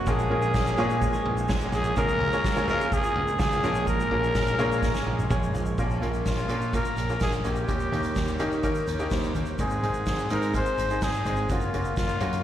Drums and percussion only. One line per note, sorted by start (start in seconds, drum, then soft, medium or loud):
0.06 kick loud
0.06 ride medium
0.06 shaker medium
0.19 shaker medium
0.31 floor tom medium
0.42 shaker medium
0.54 kick loud
0.54 snare loud
0.54 ride medium
0.54 shaker medium
0.66 ride soft
0.66 shaker medium
0.77 ride medium
0.77 shaker medium
0.90 shaker soft
1.02 kick loud
1.02 ride medium
1.02 shaker medium
1.13 shaker medium
1.26 ride medium
1.37 shaker medium
1.48 kick loud
1.48 snare loud
1.48 ride medium
1.48 shaker medium
1.61 shaker medium
1.73 snare soft
1.73 floor tom medium
1.73 ride medium
1.73 shaker medium
1.84 shaker medium
1.96 kick loud
1.96 ride medium
1.96 shaker medium
2.08 shaker medium
2.21 floor tom medium
2.21 ride medium
2.33 shaker soft
2.44 kick loud
2.44 snare loud
2.44 ride medium
2.44 shaker medium
2.56 ride soft
2.56 shaker medium
2.68 floor tom medium
2.68 ride medium
2.68 shaker soft
2.81 shaker medium
2.92 kick loud
2.92 shaker medium
3.03 shaker medium
3.17 ride medium
3.27 ride soft
3.27 shaker medium
3.39 kick loud
3.39 snare loud
3.39 ride medium
3.39 shaker medium
3.52 shaker medium
3.63 snare soft
3.63 floor tom medium
3.63 ride medium
3.63 shaker medium
3.74 shaker medium
3.87 kick loud
3.87 ride medium
3.87 shaker medium
4.00 shaker medium
4.11 floor tom medium
4.11 ride medium
4.24 shaker medium
4.34 kick loud
4.34 snare loud
4.34 ride medium
4.34 shaker medium
4.47 shaker medium
4.58 floor tom medium
4.58 ride medium
4.58 shaker medium
4.72 shaker medium
4.83 kick loud
4.83 snare medium
4.83 shaker medium
4.94 snare medium
4.94 shaker medium
5.19 high tom medium
5.19 shaker medium
5.30 kick loud
5.30 mid tom medium
5.30 shaker medium
5.43 shaker medium
5.54 floor tom loud
5.54 shaker medium
5.66 floor tom medium
5.66 shaker medium
5.78 kick loud
5.78 crash medium
5.78 shaker medium
5.90 shaker soft
6.02 closed hi-hat medium
6.02 floor tom medium
6.14 shaker soft
6.25 kick loud
6.25 snare medium
6.25 closed hi-hat medium
6.25 shaker medium
6.38 shaker soft
6.49 closed hi-hat medium
6.49 shaker soft
6.61 shaker soft
6.73 kick loud
6.73 closed hi-hat medium
6.73 shaker medium
6.85 shaker medium
6.97 closed hi-hat medium
6.97 shaker soft
7.09 shaker soft
7.20 kick loud
7.20 snare loud
7.20 closed hi-hat medium
7.20 shaker medium
7.33 shaker soft
7.44 closed hi-hat medium
7.44 floor tom medium
7.44 shaker medium
7.56 shaker soft
7.68 kick medium
7.68 closed hi-hat medium
7.68 shaker medium
7.80 shaker soft
7.93 closed hi-hat medium
7.93 floor tom medium
8.03 closed hi-hat soft
8.03 shaker soft
8.15 kick medium
8.15 snare medium
8.15 closed hi-hat medium
8.15 shaker medium
8.28 shaker medium
8.39 closed hi-hat medium
8.39 shaker soft
8.52 shaker soft
8.63 kick medium
8.63 closed hi-hat medium
8.63 shaker medium
8.75 shaker medium
8.87 closed hi-hat medium
8.87 shaker soft
8.99 shaker soft
9.10 kick loud
9.10 snare medium
9.10 closed hi-hat medium
9.10 shaker medium
9.23 shaker soft
9.35 closed hi-hat medium
9.35 floor tom medium
9.35 shaker soft
9.46 shaker soft
9.59 kick loud
9.59 closed hi-hat medium
9.59 shaker medium
9.70 shaker soft
9.83 closed hi-hat medium
9.83 floor tom medium
9.94 shaker soft
10.06 kick medium
10.06 snare medium
10.06 closed hi-hat medium
10.06 shaker medium
10.18 shaker soft
10.29 closed hi-hat medium
10.29 shaker soft
10.42 closed hi-hat medium
10.42 shaker soft
10.54 kick loud
10.54 closed hi-hat medium
10.54 shaker medium
10.66 shaker medium
10.78 closed hi-hat medium
10.78 shaker soft
10.90 shaker soft
11.02 kick loud
11.02 snare medium
11.02 closed hi-hat medium
11.02 shaker medium
11.14 shaker medium
11.25 closed hi-hat medium
11.25 floor tom medium
11.25 shaker soft
11.36 shaker soft
11.49 kick medium
11.49 closed hi-hat medium
11.49 shaker medium
11.61 shaker soft
11.73 closed hi-hat medium
11.73 floor tom medium
11.85 shaker soft
11.97 kick loud
11.97 snare loud
11.97 closed hi-hat medium
11.97 shaker medium
12.09 shaker medium
12.20 closed hi-hat medium
12.20 floor tom medium
12.20 shaker soft
12.33 closed hi-hat medium
12.33 shaker soft